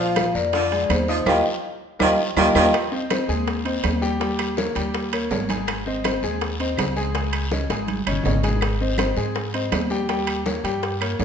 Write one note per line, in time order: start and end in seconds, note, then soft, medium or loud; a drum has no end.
0.00 0.29 A#1 medium
0.00 0.23 F3 medium
0.00 0.28 F3 medium
0.00 0.28 F4 medium
0.00 0.28 F5 medium
0.00 0.33 F5 loud
0.16 high bongo medium
0.16 high conga loud
0.16 high timbale loud
0.16 low timbale medium
0.16 short guiro medium
0.16 claves medium
0.35 0.86 F2 medium
0.35 0.50 A#3 medium
0.35 0.50 A#4 medium
0.35 0.92 D5 medium
0.35 0.50 A#5 medium
0.35 high conga soft
0.35 short guiro medium
0.53 0.84 D3 medium
0.53 0.68 F4 medium
0.53 0.68 F5 medium
0.53 0.69 F6 medium
0.53 high bongo medium
0.53 high conga soft
0.53 high timbale medium
0.53 long guiro medium
0.72 1.02 G#3 medium
0.72 1.02 G#4 medium
0.72 1.02 G#5 medium
0.72 high conga soft
0.72 high timbale medium
0.90 1.24 D#2 loud
0.90 1.28 C5 medium
0.90 high bongo soft
0.90 low bongo medium
0.90 high conga medium
0.90 high timbale medium
0.90 low timbale medium
0.90 short guiro medium
0.90 claves medium
1.08 1.18 F3 medium
1.08 1.23 D#4 medium
1.08 1.24 D#5 medium
1.08 1.24 D#6 medium
1.08 high bongo soft
1.08 high conga soft
1.08 short guiro medium
1.26 1.40 D#2 loud
1.26 1.35 D#3 medium
1.26 1.35 F3 medium
1.26 1.35 G3 medium
1.26 1.38 F4 loud
1.26 1.38 G4 loud
1.26 1.38 A#4 loud
1.26 1.39 D#5 loud
1.26 1.39 F5 loud
1.26 1.39 G5 loud
1.26 low bongo loud
1.26 high conga loud
1.26 high timbale loud
1.26 long guiro loud
1.26 claves loud
1.99 2.14 D#2 medium
1.99 2.09 D#3 loud
1.99 2.09 F3 loud
1.99 2.09 G3 loud
1.99 2.12 F4 medium
1.99 2.12 G4 medium
1.99 2.12 A#4 loud
1.99 2.13 D#5 loud
1.99 2.13 F5 loud
1.99 2.13 G5 medium
1.99 low bongo loud
1.99 high conga loud
1.99 high timbale medium
1.99 long guiro loud
1.99 claves loud
2.36 2.50 D#2 loud
2.36 2.45 D#3 loud
2.36 2.46 F3 loud
2.36 2.45 G3 loud
2.36 2.49 F4 loud
2.36 2.49 G4 loud
2.36 2.49 A#4 medium
2.36 2.49 D#5 medium
2.36 2.49 F5 loud
2.36 2.49 G5 medium
2.36 low bongo loud
2.36 high conga loud
2.36 high timbale loud
2.36 long guiro loud
2.36 claves medium
2.54 2.69 D#2 loud
2.54 2.63 D#3 loud
2.54 2.64 F3 loud
2.54 2.64 G3 loud
2.54 2.67 F4 loud
2.54 2.67 G4 loud
2.54 2.67 A#4 loud
2.54 2.68 D#5 loud
2.54 2.68 F5 loud
2.54 2.68 G5 medium
2.54 low bongo loud
2.54 high conga loud
2.54 high timbale medium
2.54 long guiro medium
2.54 claves medium
2.73 high bongo medium
2.73 high timbale medium
2.73 long guiro medium
2.73 claves medium
2.92 3.07 C4 medium
2.92 3.07 C5 medium
2.92 3.07 D#5 medium
2.92 high bongo soft
2.92 high conga soft
3.10 3.26 C4 medium
3.10 3.26 C5 medium
3.10 3.26 D#5 medium
3.10 high bongo medium
3.10 high conga loud
3.10 high timbale medium
3.10 low timbale medium
3.10 short guiro medium
3.10 claves medium
3.28 3.80 D#2 loud
3.28 3.59 G#3 medium
3.28 3.59 G#4 medium
3.28 3.59 G#5 medium
3.28 high conga soft
3.28 short guiro medium
3.47 high bongo medium
3.47 high conga soft
3.47 high timbale medium
3.47 long guiro medium
3.65 3.95 C4 medium
3.65 3.96 C5 medium
3.65 3.96 D#5 medium
3.65 high conga soft
3.65 high timbale medium
3.84 4.70 D#2 medium
3.84 high bongo soft
3.84 low bongo medium
3.84 high conga medium
3.84 high timbale medium
3.84 low timbale medium
3.84 short guiro medium
3.84 claves medium
4.01 4.17 G3 medium
4.01 4.17 G4 loud
4.01 4.17 G5 medium
4.01 high bongo soft
4.01 high conga soft
4.01 short guiro medium
4.20 4.51 G3 medium
4.20 4.51 G4 medium
4.20 4.51 G5 medium
4.20 high bongo medium
4.20 high conga soft
4.20 high timbale medium
4.20 long guiro medium
4.39 high bongo soft
4.39 high conga soft
4.39 high timbale loud
4.39 claves medium
4.57 4.72 A#3 medium
4.57 4.72 A#4 medium
4.57 4.73 C#5 medium
4.57 high bongo medium
4.57 high conga loud
4.57 low timbale medium
4.57 short guiro medium
4.75 5.27 D#2 medium
4.75 5.06 G3 medium
4.75 5.06 G4 medium
4.75 5.06 G5 medium
4.75 high conga soft
4.75 high timbale medium
4.75 short guiro medium
4.94 high bongo medium
4.94 high conga soft
4.94 high timbale medium
4.94 long guiro medium
5.13 5.28 A#3 medium
5.13 5.28 A#4 medium
5.13 5.28 C#5 medium
5.13 high conga soft
5.13 high timbale loud
5.13 claves medium
5.31 6.17 G#1 loud
5.31 5.46 A#3 medium
5.31 5.46 A#4 medium
5.31 5.47 C#5 medium
5.31 high bongo soft
5.31 low bongo medium
5.31 high conga medium
5.31 low timbale medium
5.31 short guiro medium
5.49 5.79 G#3 medium
5.49 5.80 G#4 medium
5.49 5.80 G#5 medium
5.49 high bongo soft
5.49 high conga medium
5.49 high timbale medium
5.49 short guiro medium
5.67 high bongo medium
5.67 high conga soft
5.67 high timbale medium
5.67 long guiro medium
5.67 claves medium
5.86 6.01 C4 medium
5.86 6.02 C5 medium
5.86 6.02 D#5 medium
5.86 high bongo soft
5.86 high conga soft
6.04 6.20 C4 medium
6.04 6.20 C5 medium
6.04 6.20 D#5 medium
6.04 high bongo medium
6.04 high conga loud
6.04 high timbale loud
6.04 low timbale medium
6.04 short guiro medium
6.04 claves medium
6.23 6.74 D#2 loud
6.23 6.54 G#3 medium
6.23 6.54 G#4 medium
6.23 6.54 G#5 medium
6.23 high conga soft
6.23 short guiro medium
6.41 high bongo medium
6.41 high conga soft
6.41 high timbale medium
6.41 long guiro medium
6.59 6.90 C4 medium
6.59 6.90 C5 medium
6.59 6.90 D#5 medium
6.59 high conga soft
6.59 high timbale medium
6.77 7.64 C#2 loud
6.77 high bongo soft
6.77 low bongo medium
6.77 high conga medium
6.77 high timbale medium
6.77 low timbale medium
6.77 short guiro medium
6.77 claves medium
6.96 7.11 G#3 medium
6.96 7.11 G#4 medium
6.96 7.12 G#5 medium
6.96 high bongo soft
6.96 high conga soft
6.96 short guiro medium
7.15 7.45 G#3 medium
7.15 7.45 G#4 medium
7.15 7.46 G#5 medium
7.15 high bongo medium
7.15 high conga soft
7.15 high timbale medium
7.15 long guiro medium
7.33 high bongo soft
7.33 high conga soft
7.33 high timbale medium
7.33 claves medium
7.51 7.67 C#4 medium
7.51 7.67 C#5 medium
7.51 7.67 D#5 medium
7.51 high bongo medium
7.51 high conga loud
7.51 low timbale medium
7.51 short guiro medium
7.69 8.04 G#1 medium
7.69 8.00 G#3 medium
7.69 8.01 G#4 medium
7.69 8.01 G#5 medium
7.69 high bongo medium
7.69 high conga soft
7.69 high timbale medium
7.69 short guiro medium
7.88 high conga medium
7.88 high timbale medium
7.88 long guiro medium
8.06 8.24 G1 medium
8.06 8.22 C#4 medium
8.06 8.22 C#5 medium
8.06 8.22 D#5 medium
8.06 low bongo medium
8.06 high timbale medium
8.06 claves medium
8.12 low conga medium
8.24 9.11 G#1 medium
8.24 8.40 C#4 medium
8.24 8.41 C#5 medium
8.24 8.41 D#5 medium
8.24 low conga loud
8.24 low timbale medium
8.24 short guiro medium
8.32 low bongo medium
8.36 low conga medium
8.43 8.74 G#3 medium
8.43 8.74 G#4 medium
8.43 8.74 G#5 medium
8.43 low bongo medium
8.43 high timbale medium
8.43 short guiro medium
8.49 low conga medium
8.56 low bongo medium
8.61 high bongo medium
8.61 high conga soft
8.61 high timbale medium
8.61 long guiro medium
8.61 claves medium
8.80 8.96 C4 medium
8.80 8.96 C5 medium
8.80 8.96 D#5 medium
8.80 high bongo soft
8.80 high conga soft
8.98 9.14 C4 medium
8.98 9.14 C5 medium
8.98 9.14 D#5 medium
8.98 high bongo medium
8.98 high conga loud
8.98 high timbale loud
8.98 low timbale medium
8.98 short guiro medium
8.98 claves medium
9.17 9.68 G#2 medium
9.17 9.47 G#3 medium
9.17 9.47 G#4 medium
9.17 9.48 G#5 medium
9.17 high conga soft
9.17 short guiro medium
9.35 high bongo medium
9.35 high conga soft
9.35 high timbale medium
9.35 long guiro medium
9.54 9.84 C4 medium
9.54 9.84 C5 medium
9.54 9.84 D#5 medium
9.54 high conga soft
9.54 high timbale medium
9.72 10.58 D#2 medium
9.72 high bongo soft
9.72 low bongo medium
9.72 high conga medium
9.72 high timbale loud
9.72 low timbale medium
9.72 short guiro medium
9.72 claves medium
9.90 10.06 G3 medium
9.90 10.06 G4 medium
9.90 10.06 G5 medium
9.90 high bongo soft
9.90 high conga soft
9.90 short guiro medium
10.09 10.39 G3 medium
10.09 10.39 G4 medium
10.09 10.39 G5 medium
10.09 high bongo medium
10.09 high conga soft
10.09 high timbale medium
10.09 long guiro medium
10.27 high bongo soft
10.27 high conga soft
10.27 high timbale loud
10.27 claves medium
10.45 10.61 A#3 medium
10.45 10.61 A#4 medium
10.45 10.61 C#5 medium
10.45 high bongo medium
10.45 high conga loud
10.45 low timbale medium
10.45 short guiro medium
10.64 11.15 G2 medium
10.64 10.94 G3 medium
10.64 10.94 G4 medium
10.64 10.94 G5 medium
10.64 high conga soft
10.64 high timbale medium
10.64 short guiro medium
10.82 high bongo medium
10.82 high conga soft
10.82 high timbale medium
10.82 long guiro medium
11.00 11.16 A#3 medium
11.00 11.16 A#4 medium
11.00 11.16 C#5 medium
11.00 high conga soft
11.00 high timbale loud
11.00 claves medium
11.19 11.25 G#2 medium
11.19 11.25 A#3 medium
11.19 11.25 A#4 medium
11.19 11.25 C#5 medium
11.19 high bongo soft
11.19 low bongo medium
11.19 high conga medium
11.19 low timbale medium
11.19 short guiro medium